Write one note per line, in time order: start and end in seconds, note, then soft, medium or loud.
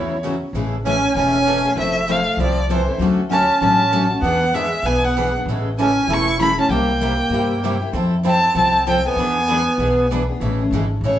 0.00 0.41 E2 medium
0.00 0.12 C#3 medium
0.00 0.13 E3 medium
0.00 0.13 F#3 medium
0.00 0.13 A3 medium
0.00 0.13 C#4 medium
0.00 0.14 E4 medium
0.00 0.18 E4 medium
0.00 0.13 F#4 medium
0.00 0.19 C#5 medium
0.24 0.34 C#3 medium
0.24 0.35 E3 medium
0.24 0.34 F#3 medium
0.24 0.35 A3 medium
0.24 0.35 C#4 medium
0.24 0.35 E4 medium
0.24 0.35 F#4 medium
0.53 1.03 A1 medium
0.53 0.74 C#3 medium
0.53 0.74 E3 medium
0.53 0.75 G#3 medium
0.53 0.75 A3 medium
0.53 0.75 C#4 medium
0.53 0.75 E4 medium
0.53 0.75 G#4 medium
0.53 0.75 A4 medium
0.84 0.96 C#3 medium
0.84 0.96 E3 medium
0.84 0.96 G#3 medium
0.84 0.96 A3 medium
0.84 1.13 C#4 medium
0.84 0.97 C#4 medium
0.84 0.97 E4 medium
0.84 0.97 G#4 medium
0.84 0.97 A4 medium
0.84 1.15 G#5 medium
1.15 1.64 E1 medium
1.15 1.36 C#3 medium
1.15 1.36 E3 medium
1.15 1.36 G#3 medium
1.15 1.36 A3 medium
1.15 1.73 C#4 medium
1.15 1.36 C#4 medium
1.15 1.36 E4 medium
1.15 1.36 G#4 medium
1.15 1.37 A4 medium
1.15 1.74 G#5 medium
1.47 1.58 C#3 medium
1.47 1.58 E3 medium
1.47 1.58 G#3 medium
1.47 1.58 A3 medium
1.47 1.58 C#4 medium
1.47 1.58 E4 medium
1.47 1.58 G#4 medium
1.47 1.58 A4 medium
1.65 1.77 A3 soft
1.65 1.77 C#4 soft
1.65 1.76 G#4 medium
1.76 2.26 F1 medium
1.76 1.97 F3 medium
1.76 2.05 A3 medium
1.76 1.97 C4 medium
1.76 1.98 E4 medium
1.76 1.98 A4 medium
1.80 2.13 E5 medium
2.08 2.19 F3 medium
2.08 2.39 A3 medium
2.08 2.19 C4 medium
2.08 2.20 E4 medium
2.08 2.20 A4 medium
2.08 2.40 F5 medium
2.37 2.87 C2 medium
2.37 2.58 F3 medium
2.37 2.67 F3 medium
2.37 2.59 C4 medium
2.37 2.59 E4 medium
2.37 2.59 A4 medium
2.43 2.70 D5 medium
2.69 2.92 E3 medium
2.69 2.80 F3 medium
2.69 2.80 C4 medium
2.69 2.81 E4 medium
2.69 2.81 A4 medium
2.74 2.95 C5 medium
2.87 2.99 C4 soft
2.87 3.00 E4 soft
2.87 2.99 A4 medium
2.98 3.48 D2 medium
2.98 3.20 D3 medium
2.98 3.20 F#3 medium
2.98 3.20 A3 medium
2.98 3.20 C#4 medium
2.98 3.20 F#4 medium
3.03 3.21 A4 medium
3.29 3.41 D3 medium
3.29 3.41 F#3 medium
3.29 3.41 A3 medium
3.29 3.59 C#4 medium
3.29 3.42 C#4 medium
3.29 3.42 F#4 medium
3.29 3.60 A5 medium
3.34 3.43 A4 medium
3.61 4.11 A1 medium
3.61 3.82 D3 medium
3.61 3.82 F#3 medium
3.61 3.82 A3 medium
3.61 4.07 C#4 medium
3.61 3.82 C#4 medium
3.61 3.82 F#4 medium
3.61 3.82 A4 medium
3.61 4.09 A5 medium
3.92 4.03 D3 medium
3.92 4.04 F#3 medium
3.92 4.04 A3 medium
3.92 4.04 C#4 medium
3.92 4.04 F#4 medium
3.92 4.04 A4 medium
4.10 4.23 A3 soft
4.10 4.23 C#4 medium
4.10 4.23 F#4 medium
4.21 4.72 E2 medium
4.21 4.43 E3 medium
4.21 4.51 B3 medium
4.21 4.44 B3 medium
4.21 4.44 D4 medium
4.21 4.55 F#5 medium
4.25 4.44 G#4 medium
4.25 4.45 B4 medium
4.53 4.65 E3 medium
4.53 4.84 G#3 medium
4.53 4.65 B3 medium
4.53 4.65 D4 medium
4.53 4.66 G#4 medium
4.53 4.66 B4 medium
4.53 4.87 E5 medium
4.82 5.33 B1 medium
4.82 5.05 E3 medium
4.82 5.03 B3 medium
4.82 5.05 B3 medium
4.82 5.05 D4 medium
4.82 5.06 G#4 medium
4.82 5.06 B4 medium
4.82 5.06 G#5 medium
5.04 5.35 B3 medium
5.04 5.35 F#5 medium
5.17 5.27 E3 medium
5.17 5.28 B3 medium
5.17 5.28 D4 medium
5.17 5.28 G#4 medium
5.17 5.28 B4 medium
5.36 5.48 B3 soft
5.36 5.48 D4 soft
5.36 5.47 G#4 medium
5.45 5.95 A1 medium
5.45 5.68 C#3 medium
5.45 5.68 E3 medium
5.45 5.68 G#3 medium
5.45 5.68 A3 medium
5.45 5.68 C#4 medium
5.45 5.68 G#4 medium
5.50 5.68 E4 medium
5.50 5.68 A4 medium
5.78 5.89 C#3 medium
5.78 5.90 E3 medium
5.78 5.89 G#3 medium
5.78 5.90 A3 medium
5.78 6.07 C#4 medium
5.78 5.90 C#4 medium
5.78 5.89 E4 medium
5.78 5.90 G#4 medium
5.78 5.90 A4 medium
5.78 6.15 G#5 medium
6.07 6.57 E1 medium
6.07 6.28 C#3 medium
6.07 6.29 E3 medium
6.07 6.29 G#3 medium
6.07 6.29 A3 medium
6.07 6.29 C#4 medium
6.07 6.38 E4 medium
6.07 6.29 E4 medium
6.07 6.29 G#4 medium
6.07 6.29 A4 medium
6.13 6.42 C#6 medium
6.39 6.50 C#3 medium
6.39 6.51 E3 medium
6.39 6.51 G#3 medium
6.39 6.51 A3 medium
6.39 6.51 C#4 medium
6.39 6.57 E4 medium
6.39 6.52 E4 medium
6.39 6.51 G#4 medium
6.39 6.52 A4 medium
6.39 6.58 B5 medium
6.57 6.70 A3 soft
6.57 6.69 C#4 medium
6.57 6.70 C#4 soft
6.57 6.70 G#4 medium
6.57 6.71 A5 medium
6.69 7.19 C2 medium
6.69 6.90 C3 medium
6.69 6.91 G3 medium
6.69 7.77 A#3 medium
6.69 6.90 A#3 medium
6.69 6.91 E4 medium
6.69 6.91 G4 medium
6.69 7.79 G5 medium
7.00 7.12 C3 medium
7.00 7.12 G3 medium
7.00 7.12 A#3 medium
7.00 7.12 E4 medium
7.00 7.12 G4 medium
7.30 7.80 G2 medium
7.30 7.52 C3 medium
7.30 7.52 G3 medium
7.30 7.52 A#3 medium
7.30 7.52 E4 medium
7.30 7.52 G4 medium
7.63 7.74 C3 medium
7.63 7.74 G3 medium
7.63 7.74 A#3 medium
7.63 7.75 E4 medium
7.63 7.74 G4 medium
7.81 7.93 A#3 soft
7.81 7.92 E4 soft
7.81 7.93 G4 medium
7.93 8.43 F2 medium
7.93 8.13 F3 medium
7.93 8.14 C4 medium
7.93 8.14 E4 medium
7.93 8.14 A4 medium
8.25 8.36 F3 medium
8.25 8.36 C4 medium
8.25 8.54 C4 medium
8.25 8.36 E4 medium
8.25 8.36 A4 medium
8.29 8.56 A5 loud
8.55 9.05 C2 medium
8.55 8.76 F3 medium
8.55 8.84 C4 medium
8.55 8.76 C4 medium
8.55 8.76 E4 medium
8.55 8.76 A4 medium
8.55 8.85 A5 medium
8.87 8.98 F3 medium
8.87 8.98 C4 medium
8.87 9.04 C4 medium
8.87 8.98 E4 medium
8.87 8.98 A4 medium
8.87 9.06 G5 medium
9.05 10.07 B3 medium
9.05 9.18 C4 soft
9.05 9.17 E4 soft
9.05 9.17 A4 medium
9.05 10.08 G#5 medium
9.16 9.66 E2 medium
9.16 9.38 E3 medium
9.16 9.38 B3 medium
9.16 9.38 D4 medium
9.16 9.39 G#4 medium
9.16 9.38 B4 medium
9.50 9.60 E3 medium
9.50 9.60 B3 medium
9.50 9.61 D4 medium
9.50 9.61 G#4 medium
9.50 9.60 B4 medium
9.78 10.28 B1 medium
9.78 10.00 E3 medium
9.78 10.00 B3 medium
9.78 10.00 D4 medium
9.78 10.00 G#4 medium
9.78 10.00 B4 medium
10.11 10.21 E3 medium
10.11 10.22 B3 medium
10.11 10.22 D4 medium
10.11 10.22 G#4 medium
10.11 10.22 B4 medium
10.29 10.42 B3 soft
10.29 10.42 D4 soft
10.29 10.41 G#4 soft
10.40 10.65 A1 medium
10.40 10.59 C#3 medium
10.40 10.59 E3 medium
10.40 10.62 G#3 medium
10.40 10.60 A3 medium
10.40 10.60 C#4 medium
10.40 10.61 E4 medium
10.40 10.59 G#4 medium
10.40 10.61 A4 medium
10.60 10.72 A3 soft
10.60 10.72 C#4 soft
10.60 10.72 G#4 soft
10.71 10.98 G#1 medium
10.71 10.83 C#3 medium
10.71 10.84 E3 medium
10.71 10.84 G#3 medium
10.71 10.84 A3 medium
10.71 10.84 C#4 medium
10.71 10.84 E4 medium
10.71 10.84 A4 medium
10.75 10.84 G#4 medium
11.01 11.19 A1 medium
11.01 11.19 C#3 medium
11.01 11.19 G#3 medium
11.05 11.19 E3 medium
11.05 11.19 A3 medium
11.05 11.19 C#4 medium
11.05 11.19 E4 medium
11.05 11.19 G#4 medium
11.05 11.19 A4 medium
11.05 11.19 C#5 medium